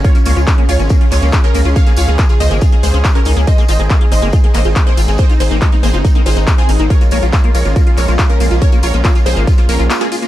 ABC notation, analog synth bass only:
X:1
M:4/4
L:1/16
Q:1/4=140
K:Bbm
V:1 name="Analog synth bass" clef=bass
z2 D,, D,, z2 D,, A,,, z2 D,, D,, z2 D,, D,, | z2 D,, D,, z2 D,, A,,, z2 D,, D,, z2 D,, D,, | z2 A,,, A,,, z2 A,,, G,,, z2 A,,, A,,, z2 A,,, A,,, | z2 A,,, A,,, z2 A,,, G,,, z2 A,,, A,,, z2 A,,, A,,, |
z2 B,,, B,,, z2 B,,, A,,, z2 B,,, B,,, z2 B,,, B,,, | z2 B,,, B,,, z2 B,,, A,,, z2 B,,, B,,, z4 |]